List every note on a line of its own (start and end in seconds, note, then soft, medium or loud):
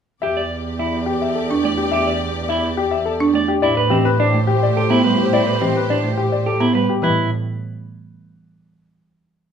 0.22 3.47 E2 medium
0.22 0.42 G4 medium
0.22 3.45 G4 medium
0.22 3.45 D5 medium
0.22 0.41 E5 medium
0.37 0.56 D5 soft
0.79 0.98 E4 medium
0.79 0.98 E5 soft
1.06 1.26 G4 medium
1.22 1.41 E5 medium
1.35 1.55 A4 medium
1.51 1.69 D4 medium
1.64 1.83 A3 medium
1.64 1.84 D5 medium
1.77 1.97 G4 medium
1.91 2.12 G4 medium
1.91 2.11 E5 medium
2.07 2.26 D5 medium
2.49 2.68 E4 medium
2.49 2.68 E5 medium
2.77 2.96 G4 medium
2.91 3.10 E5 medium
3.05 3.25 A4 medium
3.20 3.39 D4 medium
3.34 3.53 A3 medium
3.34 3.53 D5 medium
3.48 3.67 G4 medium
3.62 6.88 A2 medium
3.62 3.77 E4 medium
3.62 6.84 G4 medium
3.62 6.84 C5 medium
3.62 3.81 D5 medium
3.77 3.96 B4 medium
3.90 4.10 E3 medium
3.90 4.10 C4 medium
3.90 4.09 G4 medium
4.05 4.24 B4 medium
4.20 4.38 D4 medium
4.20 4.38 D5 medium
4.34 4.52 A3 medium
4.47 4.66 G4 medium
4.63 4.81 D5 medium
4.76 4.95 G4 medium
4.76 4.95 A4 medium
4.90 5.09 B3 medium
4.90 5.04 E4 medium
5.04 5.23 G3 medium
5.04 5.23 B4 medium
5.18 5.37 G4 medium
5.33 5.47 E4 medium
5.33 5.52 D5 medium
5.47 5.66 B4 soft
5.61 5.80 E3 medium
5.61 5.80 C4 medium
5.61 5.80 G4 medium
5.76 5.94 B4 medium
5.90 6.08 D4 medium
5.90 6.08 D5 medium
6.04 6.22 A3 medium
6.17 6.36 G4 medium
6.32 6.51 D5 medium
6.46 6.65 G4 medium
6.46 6.65 A4 medium
6.60 6.79 B3 medium
6.60 6.75 E4 medium
6.74 6.93 G3 soft
6.74 6.93 B4 soft
6.89 7.07 G4 medium
7.02 7.29 A2 medium
7.02 7.29 E3 medium
7.02 7.30 E4 medium
7.02 7.29 B4 medium